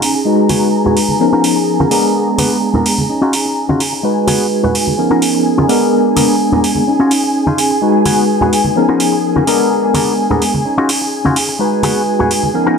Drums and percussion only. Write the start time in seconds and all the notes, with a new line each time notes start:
0.02 open hi-hat
0.15 shaker
0.26 shaker
0.38 shaker
0.49 open hi-hat, high conga
0.62 shaker
0.73 shaker
0.86 low conga, shaker
0.97 open hi-hat
1.09 high conga, shaker
1.44 open hi-hat
1.56 shaker
1.68 shaker
1.80 high conga, shaker
1.91 open hi-hat
2.04 shaker
2.15 shaker
2.27 shaker
2.38 open hi-hat, high conga
2.62 shaker
2.74 low conga, shaker
2.86 open hi-hat
2.98 high conga, shaker
3.33 open hi-hat
3.46 shaker
3.57 shaker
3.69 high conga, shaker
3.80 open hi-hat
3.93 shaker
4.04 shaker
4.17 shaker
4.28 open hi-hat, high conga
4.51 shaker
4.63 low conga, shaker
4.75 open hi-hat
4.87 high conga, shaker
4.98 shaker
5.11 shaker
5.22 open hi-hat
5.34 shaker
5.45 shaker
5.59 high conga, shaker
5.69 open hi-hat
5.81 shaker
5.93 shaker
6.05 shaker
6.17 open hi-hat, high conga
6.29 shaker
6.40 shaker
6.52 low conga, shaker
6.64 open hi-hat
6.75 high conga, shaker
6.99 shaker
7.11 open hi-hat
7.23 shaker
7.34 shaker
7.47 high conga, shaker
7.58 open hi-hat
7.70 shaker
7.82 shaker
7.95 shaker
8.05 open hi-hat, high conga
8.17 shaker
8.29 shaker
8.41 low conga, shaker
8.53 open hi-hat
8.65 high conga, shaker
8.76 shaker
8.89 shaker
9.00 open hi-hat
9.12 shaker
9.24 shaker
9.35 high conga, shaker
9.47 open hi-hat
9.60 shaker
9.71 shaker
9.83 shaker
9.94 open hi-hat, high conga
10.06 shaker
10.18 shaker
10.31 low conga, shaker
10.42 open hi-hat
10.53 high conga, shaker
10.65 shaker
10.78 shaker
10.89 open hi-hat
11.01 shaker
11.13 shaker
11.25 high conga, shaker
11.36 open hi-hat
11.49 shaker
11.60 shaker
11.72 shaker
11.83 open hi-hat, high conga
11.96 shaker
12.07 shaker
12.20 low conga, shaker
12.31 open hi-hat
12.43 high conga, shaker
12.67 shaker